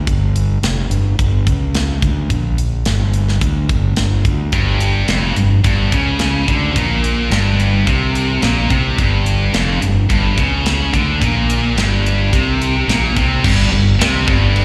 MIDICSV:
0, 0, Header, 1, 4, 480
1, 0, Start_track
1, 0, Key_signature, -2, "minor"
1, 0, Tempo, 556586
1, 63, Time_signature, 4, 2, 24, 8
1, 12633, End_track
2, 0, Start_track
2, 0, Title_t, "Distorted electric guitar"
2, 0, Program_c, 0, 30
2, 3911, Note_on_c, 0, 43, 94
2, 4380, Note_off_c, 0, 43, 0
2, 4384, Note_on_c, 0, 41, 83
2, 4619, Note_off_c, 0, 41, 0
2, 4625, Note_on_c, 0, 43, 62
2, 4819, Note_off_c, 0, 43, 0
2, 4867, Note_on_c, 0, 43, 86
2, 5100, Note_off_c, 0, 43, 0
2, 5111, Note_on_c, 0, 49, 85
2, 5583, Note_off_c, 0, 49, 0
2, 5590, Note_on_c, 0, 50, 87
2, 5822, Note_off_c, 0, 50, 0
2, 5829, Note_on_c, 0, 46, 86
2, 6302, Note_off_c, 0, 46, 0
2, 6303, Note_on_c, 0, 43, 84
2, 6779, Note_off_c, 0, 43, 0
2, 6782, Note_on_c, 0, 48, 90
2, 7258, Note_off_c, 0, 48, 0
2, 7261, Note_on_c, 0, 46, 83
2, 7498, Note_off_c, 0, 46, 0
2, 7507, Note_on_c, 0, 48, 89
2, 7741, Note_off_c, 0, 48, 0
2, 7752, Note_on_c, 0, 43, 93
2, 8224, Note_off_c, 0, 43, 0
2, 8229, Note_on_c, 0, 41, 91
2, 8462, Note_off_c, 0, 41, 0
2, 8465, Note_on_c, 0, 43, 65
2, 8660, Note_off_c, 0, 43, 0
2, 8707, Note_on_c, 0, 43, 85
2, 8941, Note_off_c, 0, 43, 0
2, 8954, Note_on_c, 0, 49, 95
2, 9425, Note_off_c, 0, 49, 0
2, 9430, Note_on_c, 0, 50, 80
2, 9663, Note_off_c, 0, 50, 0
2, 9668, Note_on_c, 0, 46, 90
2, 10142, Note_off_c, 0, 46, 0
2, 10153, Note_on_c, 0, 43, 80
2, 10624, Note_off_c, 0, 43, 0
2, 10627, Note_on_c, 0, 48, 89
2, 11101, Note_off_c, 0, 48, 0
2, 11112, Note_on_c, 0, 46, 81
2, 11343, Note_off_c, 0, 46, 0
2, 11351, Note_on_c, 0, 48, 79
2, 11582, Note_off_c, 0, 48, 0
2, 11592, Note_on_c, 0, 43, 102
2, 11822, Note_off_c, 0, 43, 0
2, 11833, Note_on_c, 0, 43, 74
2, 12022, Note_off_c, 0, 43, 0
2, 12069, Note_on_c, 0, 48, 103
2, 12300, Note_off_c, 0, 48, 0
2, 12306, Note_on_c, 0, 43, 107
2, 12633, Note_off_c, 0, 43, 0
2, 12633, End_track
3, 0, Start_track
3, 0, Title_t, "Fingered electric bass"
3, 0, Program_c, 1, 33
3, 63, Note_on_c, 1, 31, 77
3, 510, Note_off_c, 1, 31, 0
3, 538, Note_on_c, 1, 29, 78
3, 764, Note_off_c, 1, 29, 0
3, 771, Note_on_c, 1, 31, 64
3, 1001, Note_off_c, 1, 31, 0
3, 1024, Note_on_c, 1, 31, 79
3, 1248, Note_off_c, 1, 31, 0
3, 1268, Note_on_c, 1, 37, 83
3, 1713, Note_off_c, 1, 37, 0
3, 1745, Note_on_c, 1, 38, 85
3, 1968, Note_off_c, 1, 38, 0
3, 1984, Note_on_c, 1, 34, 77
3, 2432, Note_off_c, 1, 34, 0
3, 2462, Note_on_c, 1, 31, 88
3, 2911, Note_off_c, 1, 31, 0
3, 2947, Note_on_c, 1, 38, 76
3, 3170, Note_off_c, 1, 38, 0
3, 3187, Note_on_c, 1, 31, 79
3, 3410, Note_off_c, 1, 31, 0
3, 3432, Note_on_c, 1, 31, 57
3, 3653, Note_off_c, 1, 31, 0
3, 3664, Note_on_c, 1, 38, 75
3, 3889, Note_off_c, 1, 38, 0
3, 3903, Note_on_c, 1, 31, 70
3, 4352, Note_off_c, 1, 31, 0
3, 4384, Note_on_c, 1, 29, 84
3, 4609, Note_off_c, 1, 29, 0
3, 4625, Note_on_c, 1, 31, 63
3, 4850, Note_off_c, 1, 31, 0
3, 4864, Note_on_c, 1, 31, 73
3, 5089, Note_off_c, 1, 31, 0
3, 5108, Note_on_c, 1, 37, 78
3, 5554, Note_off_c, 1, 37, 0
3, 5590, Note_on_c, 1, 38, 81
3, 5812, Note_off_c, 1, 38, 0
3, 5829, Note_on_c, 1, 34, 78
3, 6276, Note_off_c, 1, 34, 0
3, 6299, Note_on_c, 1, 31, 87
3, 6750, Note_off_c, 1, 31, 0
3, 6788, Note_on_c, 1, 36, 75
3, 7235, Note_off_c, 1, 36, 0
3, 7267, Note_on_c, 1, 34, 75
3, 7491, Note_off_c, 1, 34, 0
3, 7507, Note_on_c, 1, 36, 87
3, 7732, Note_off_c, 1, 36, 0
3, 7748, Note_on_c, 1, 31, 83
3, 8195, Note_off_c, 1, 31, 0
3, 8229, Note_on_c, 1, 29, 85
3, 8453, Note_off_c, 1, 29, 0
3, 8471, Note_on_c, 1, 31, 64
3, 8694, Note_off_c, 1, 31, 0
3, 8710, Note_on_c, 1, 31, 87
3, 8933, Note_off_c, 1, 31, 0
3, 8950, Note_on_c, 1, 37, 85
3, 9397, Note_off_c, 1, 37, 0
3, 9432, Note_on_c, 1, 38, 85
3, 9655, Note_off_c, 1, 38, 0
3, 9672, Note_on_c, 1, 34, 76
3, 10118, Note_off_c, 1, 34, 0
3, 10147, Note_on_c, 1, 31, 84
3, 10595, Note_off_c, 1, 31, 0
3, 10630, Note_on_c, 1, 36, 71
3, 11076, Note_off_c, 1, 36, 0
3, 11105, Note_on_c, 1, 34, 75
3, 11330, Note_off_c, 1, 34, 0
3, 11354, Note_on_c, 1, 36, 77
3, 11574, Note_off_c, 1, 36, 0
3, 11593, Note_on_c, 1, 31, 94
3, 11813, Note_off_c, 1, 31, 0
3, 11825, Note_on_c, 1, 31, 79
3, 12049, Note_off_c, 1, 31, 0
3, 12060, Note_on_c, 1, 36, 93
3, 12286, Note_off_c, 1, 36, 0
3, 12313, Note_on_c, 1, 31, 94
3, 12633, Note_off_c, 1, 31, 0
3, 12633, End_track
4, 0, Start_track
4, 0, Title_t, "Drums"
4, 63, Note_on_c, 9, 36, 83
4, 64, Note_on_c, 9, 42, 69
4, 149, Note_off_c, 9, 36, 0
4, 151, Note_off_c, 9, 42, 0
4, 308, Note_on_c, 9, 42, 58
4, 394, Note_off_c, 9, 42, 0
4, 547, Note_on_c, 9, 42, 76
4, 552, Note_on_c, 9, 38, 94
4, 633, Note_off_c, 9, 42, 0
4, 638, Note_off_c, 9, 38, 0
4, 785, Note_on_c, 9, 42, 53
4, 872, Note_off_c, 9, 42, 0
4, 1026, Note_on_c, 9, 36, 95
4, 1026, Note_on_c, 9, 42, 74
4, 1112, Note_off_c, 9, 36, 0
4, 1112, Note_off_c, 9, 42, 0
4, 1266, Note_on_c, 9, 36, 88
4, 1271, Note_on_c, 9, 42, 56
4, 1352, Note_off_c, 9, 36, 0
4, 1358, Note_off_c, 9, 42, 0
4, 1505, Note_on_c, 9, 42, 77
4, 1511, Note_on_c, 9, 38, 93
4, 1592, Note_off_c, 9, 42, 0
4, 1597, Note_off_c, 9, 38, 0
4, 1745, Note_on_c, 9, 36, 81
4, 1748, Note_on_c, 9, 42, 53
4, 1832, Note_off_c, 9, 36, 0
4, 1834, Note_off_c, 9, 42, 0
4, 1984, Note_on_c, 9, 36, 87
4, 1984, Note_on_c, 9, 42, 74
4, 2070, Note_off_c, 9, 42, 0
4, 2071, Note_off_c, 9, 36, 0
4, 2227, Note_on_c, 9, 42, 55
4, 2313, Note_off_c, 9, 42, 0
4, 2462, Note_on_c, 9, 42, 70
4, 2467, Note_on_c, 9, 38, 101
4, 2548, Note_off_c, 9, 42, 0
4, 2553, Note_off_c, 9, 38, 0
4, 2704, Note_on_c, 9, 42, 47
4, 2790, Note_off_c, 9, 42, 0
4, 2834, Note_on_c, 9, 38, 26
4, 2920, Note_off_c, 9, 38, 0
4, 2944, Note_on_c, 9, 42, 69
4, 2945, Note_on_c, 9, 36, 91
4, 3030, Note_off_c, 9, 42, 0
4, 3031, Note_off_c, 9, 36, 0
4, 3186, Note_on_c, 9, 36, 91
4, 3188, Note_on_c, 9, 42, 50
4, 3272, Note_off_c, 9, 36, 0
4, 3274, Note_off_c, 9, 42, 0
4, 3419, Note_on_c, 9, 42, 66
4, 3424, Note_on_c, 9, 38, 94
4, 3505, Note_off_c, 9, 42, 0
4, 3510, Note_off_c, 9, 38, 0
4, 3665, Note_on_c, 9, 36, 84
4, 3665, Note_on_c, 9, 42, 48
4, 3751, Note_off_c, 9, 36, 0
4, 3751, Note_off_c, 9, 42, 0
4, 3901, Note_on_c, 9, 42, 62
4, 3905, Note_on_c, 9, 36, 85
4, 3987, Note_off_c, 9, 42, 0
4, 3991, Note_off_c, 9, 36, 0
4, 4144, Note_on_c, 9, 42, 55
4, 4230, Note_off_c, 9, 42, 0
4, 4382, Note_on_c, 9, 42, 75
4, 4387, Note_on_c, 9, 38, 97
4, 4468, Note_off_c, 9, 42, 0
4, 4473, Note_off_c, 9, 38, 0
4, 4625, Note_on_c, 9, 42, 47
4, 4712, Note_off_c, 9, 42, 0
4, 4866, Note_on_c, 9, 42, 80
4, 4868, Note_on_c, 9, 36, 94
4, 4953, Note_off_c, 9, 42, 0
4, 4954, Note_off_c, 9, 36, 0
4, 5107, Note_on_c, 9, 42, 59
4, 5108, Note_on_c, 9, 36, 99
4, 5193, Note_off_c, 9, 42, 0
4, 5195, Note_off_c, 9, 36, 0
4, 5341, Note_on_c, 9, 42, 77
4, 5346, Note_on_c, 9, 38, 100
4, 5427, Note_off_c, 9, 42, 0
4, 5432, Note_off_c, 9, 38, 0
4, 5589, Note_on_c, 9, 36, 92
4, 5590, Note_on_c, 9, 42, 51
4, 5676, Note_off_c, 9, 36, 0
4, 5677, Note_off_c, 9, 42, 0
4, 5829, Note_on_c, 9, 36, 87
4, 5829, Note_on_c, 9, 42, 80
4, 5915, Note_off_c, 9, 42, 0
4, 5916, Note_off_c, 9, 36, 0
4, 6071, Note_on_c, 9, 42, 58
4, 6158, Note_off_c, 9, 42, 0
4, 6309, Note_on_c, 9, 42, 75
4, 6314, Note_on_c, 9, 38, 105
4, 6395, Note_off_c, 9, 42, 0
4, 6400, Note_off_c, 9, 38, 0
4, 6551, Note_on_c, 9, 42, 51
4, 6637, Note_off_c, 9, 42, 0
4, 6788, Note_on_c, 9, 36, 98
4, 6788, Note_on_c, 9, 42, 68
4, 6874, Note_off_c, 9, 42, 0
4, 6875, Note_off_c, 9, 36, 0
4, 7031, Note_on_c, 9, 42, 55
4, 7118, Note_off_c, 9, 42, 0
4, 7265, Note_on_c, 9, 42, 68
4, 7270, Note_on_c, 9, 38, 92
4, 7351, Note_off_c, 9, 42, 0
4, 7356, Note_off_c, 9, 38, 0
4, 7506, Note_on_c, 9, 42, 49
4, 7507, Note_on_c, 9, 36, 88
4, 7593, Note_off_c, 9, 36, 0
4, 7593, Note_off_c, 9, 42, 0
4, 7748, Note_on_c, 9, 36, 92
4, 7748, Note_on_c, 9, 42, 68
4, 7834, Note_off_c, 9, 42, 0
4, 7835, Note_off_c, 9, 36, 0
4, 7988, Note_on_c, 9, 42, 50
4, 8074, Note_off_c, 9, 42, 0
4, 8227, Note_on_c, 9, 42, 75
4, 8232, Note_on_c, 9, 38, 102
4, 8313, Note_off_c, 9, 42, 0
4, 8318, Note_off_c, 9, 38, 0
4, 8470, Note_on_c, 9, 42, 50
4, 8557, Note_off_c, 9, 42, 0
4, 8710, Note_on_c, 9, 36, 88
4, 8710, Note_on_c, 9, 42, 74
4, 8796, Note_off_c, 9, 36, 0
4, 8796, Note_off_c, 9, 42, 0
4, 8949, Note_on_c, 9, 36, 86
4, 8950, Note_on_c, 9, 42, 54
4, 9035, Note_off_c, 9, 36, 0
4, 9036, Note_off_c, 9, 42, 0
4, 9192, Note_on_c, 9, 42, 78
4, 9198, Note_on_c, 9, 38, 97
4, 9279, Note_off_c, 9, 42, 0
4, 9284, Note_off_c, 9, 38, 0
4, 9431, Note_on_c, 9, 36, 90
4, 9436, Note_on_c, 9, 42, 54
4, 9518, Note_off_c, 9, 36, 0
4, 9522, Note_off_c, 9, 42, 0
4, 9673, Note_on_c, 9, 36, 90
4, 9680, Note_on_c, 9, 42, 75
4, 9759, Note_off_c, 9, 36, 0
4, 9766, Note_off_c, 9, 42, 0
4, 9915, Note_on_c, 9, 42, 65
4, 10002, Note_off_c, 9, 42, 0
4, 10156, Note_on_c, 9, 42, 77
4, 10161, Note_on_c, 9, 38, 91
4, 10243, Note_off_c, 9, 42, 0
4, 10248, Note_off_c, 9, 38, 0
4, 10404, Note_on_c, 9, 42, 52
4, 10490, Note_off_c, 9, 42, 0
4, 10634, Note_on_c, 9, 36, 92
4, 10640, Note_on_c, 9, 42, 76
4, 10720, Note_off_c, 9, 36, 0
4, 10726, Note_off_c, 9, 42, 0
4, 10880, Note_on_c, 9, 42, 54
4, 10966, Note_off_c, 9, 42, 0
4, 11120, Note_on_c, 9, 42, 75
4, 11125, Note_on_c, 9, 38, 96
4, 11206, Note_off_c, 9, 42, 0
4, 11211, Note_off_c, 9, 38, 0
4, 11354, Note_on_c, 9, 36, 90
4, 11358, Note_on_c, 9, 42, 50
4, 11440, Note_off_c, 9, 36, 0
4, 11444, Note_off_c, 9, 42, 0
4, 11594, Note_on_c, 9, 36, 98
4, 11602, Note_on_c, 9, 49, 122
4, 11602, Note_on_c, 9, 57, 56
4, 11680, Note_off_c, 9, 36, 0
4, 11688, Note_off_c, 9, 49, 0
4, 11688, Note_off_c, 9, 57, 0
4, 12082, Note_on_c, 9, 57, 66
4, 12087, Note_on_c, 9, 38, 116
4, 12168, Note_off_c, 9, 57, 0
4, 12173, Note_off_c, 9, 38, 0
4, 12313, Note_on_c, 9, 36, 112
4, 12399, Note_off_c, 9, 36, 0
4, 12555, Note_on_c, 9, 57, 69
4, 12633, Note_off_c, 9, 57, 0
4, 12633, End_track
0, 0, End_of_file